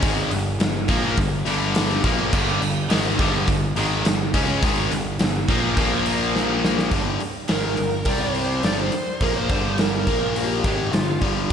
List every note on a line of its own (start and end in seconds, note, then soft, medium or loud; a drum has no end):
0.02 0.30 G#1 medium
0.02 0.30 G#2 medium
0.02 0.31 D#3 loud
0.02 0.31 G#3 loud
0.02 kick loud
0.02 open hi-hat medium
0.31 0.58 G1 medium
0.31 0.54 G2 medium
0.31 0.54 D3 medium
0.31 open hi-hat medium
0.60 0.87 G1 medium
0.60 0.83 G2 medium
0.60 0.83 D3 medium
0.60 snare loud
0.60 open hi-hat medium
0.88 1.16 A#1 medium
0.88 1.16 A#2 medium
0.88 1.17 F3 medium
0.88 1.17 A#3 medium
0.88 kick loud
0.88 snare soft
0.88 open hi-hat medium
1.16 1.44 G1 medium
1.16 1.40 G2 medium
1.16 1.40 D3 medium
1.16 kick loud
1.16 open hi-hat medium
1.45 2.00 G1 medium
1.45 2.03 G2 medium
1.45 2.03 D3 loud
1.45 2.03 G3 loud
1.45 open hi-hat medium
1.75 snare loud
1.75 open hi-hat medium
2.04 2.31 A#1 medium
2.04 2.32 A#2 medium
2.04 2.32 F3 loud
2.04 2.32 A#3 loud
2.04 kick loud
2.04 open hi-hat medium
2.32 2.60 G1 loud
2.32 2.60 G2 medium
2.32 2.60 D3 loud
2.32 2.61 G3 loud
2.32 kick loud
2.32 crash loud
2.61 2.88 G1 medium
2.61 2.85 G2 medium
2.61 2.85 D3 medium
2.61 open hi-hat medium
2.90 3.17 G#1 loud
2.90 3.18 G#2 medium
2.90 3.18 D#3 loud
2.90 3.19 G#3 loud
2.90 snare loud
2.90 open hi-hat medium
3.19 3.46 G1 loud
3.19 3.47 G2 loud
3.19 3.47 D3 loud
3.19 3.47 G3 loud
3.19 kick loud
3.19 snare soft
3.19 open hi-hat medium
3.48 3.74 G1 medium
3.48 3.71 G2 medium
3.48 3.71 D3 medium
3.48 kick medium
3.48 open hi-hat medium
3.76 4.03 G#1 loud
3.76 4.04 G#2 medium
3.76 4.05 D#3 loud
3.76 4.05 G#3 loud
3.76 open hi-hat medium
4.05 4.32 G1 medium
4.05 4.29 G2 medium
4.05 4.29 D3 medium
4.05 snare loud
4.05 open hi-hat medium
4.34 4.61 C#2 medium
4.34 4.62 C#3 loud
4.34 4.62 G#3 loud
4.34 4.62 C#4 loud
4.34 kick loud
4.34 open hi-hat medium
4.63 4.89 G#1 medium
4.63 4.90 G#2 medium
4.63 4.91 D#3 loud
4.63 4.91 G#3 loud
4.63 kick loud
4.63 open hi-hat medium
4.92 5.18 G1 medium
4.92 5.14 G2 medium
4.92 5.15 D3 medium
4.92 open hi-hat medium
5.19 5.47 G1 medium
5.19 5.43 G2 medium
5.19 5.43 D3 medium
5.19 snare loud
5.19 open hi-hat medium
5.48 5.75 A#1 medium
5.48 5.77 A#2 medium
5.48 5.77 F3 loud
5.48 5.77 A#3 loud
5.48 kick loud
5.48 open hi-hat medium
5.77 6.88 A#1 medium
5.77 6.92 A#2 medium
5.77 6.92 F3 loud
5.77 6.93 A#3 loud
5.77 kick loud
5.77 open hi-hat medium
6.06 open hi-hat medium
6.36 snare medium
6.64 snare medium
6.79 snare medium
6.91 7.18 G1 medium
6.91 7.19 G2 medium
6.91 7.20 D3 loud
6.91 7.20 G3 loud
6.91 kick loud
6.91 open hi-hat medium
7.20 muted distorted electric guitar stroke medium
7.20 muted picked electric bass stroke soft
7.20 muted overdriven electric guitar stroke medium
7.20 open hi-hat medium
7.48 7.76 G#1 medium
7.48 7.77 G#2 medium
7.48 7.77 D#3 medium
7.48 7.78 G#3 loud
7.48 7.64 A#4 medium
7.48 snare loud
7.48 open hi-hat medium
7.65 8.09 A#4 medium
7.77 8.05 G1 medium
7.77 8.01 G2 medium
7.77 8.01 D3 medium
7.77 open hi-hat medium
8.05 8.60 C2 medium
8.05 8.63 C3 medium
8.05 8.63 G3 loud
8.05 8.63 C4 medium
8.05 8.22 D5 loud
8.05 kick loud
8.05 open hi-hat medium
8.22 8.64 C5 loud
8.35 open hi-hat medium
8.63 8.91 G1 medium
8.63 8.92 G2 medium
8.63 8.92 D3 medium
8.63 8.92 G3 medium
8.63 8.78 D5 loud
8.63 snare loud
8.63 open hi-hat medium
8.79 9.22 C5 medium
8.92 muted picked electric bass stroke soft
8.92 muted distorted electric guitar stroke medium
8.92 muted overdriven electric guitar stroke medium
8.92 open hi-hat medium
9.21 9.48 A#1 medium
9.21 9.49 A#2 medium
9.21 9.50 F3 loud
9.21 9.50 A#3 loud
9.21 9.35 A#4 medium
9.21 kick loud
9.21 open hi-hat medium
9.35 9.79 C5 medium
9.50 10.03 G1 medium
9.50 10.07 G2 loud
9.50 10.06 D3 medium
9.50 10.07 G3 loud
9.50 kick loud
9.50 open hi-hat medium
9.78 9.92 A#4 medium
9.78 snare loud
9.78 open hi-hat medium
9.93 10.37 A#4 medium
10.07 10.61 A#1 medium
10.07 10.64 A#2 medium
10.07 10.64 F3 loud
10.07 10.64 A#3 loud
10.07 kick loud
10.07 open hi-hat medium
10.35 10.94 G4 medium
10.35 open hi-hat medium
10.64 10.91 G#1 medium
10.64 10.93 G#2 medium
10.64 10.93 D#3 loud
10.64 10.93 G#3 loud
10.64 kick loud
10.64 open hi-hat medium
10.92 11.19 G1 medium
10.92 11.17 G2 medium
10.92 11.17 D3 medium
10.92 11.18 F4 medium
10.92 snare loud
10.92 open hi-hat medium
11.21 11.49 G1 medium
11.21 11.50 G2 medium
11.21 11.50 D3 loud
11.21 11.50 G3 loud
11.21 kick loud
11.21 open hi-hat soft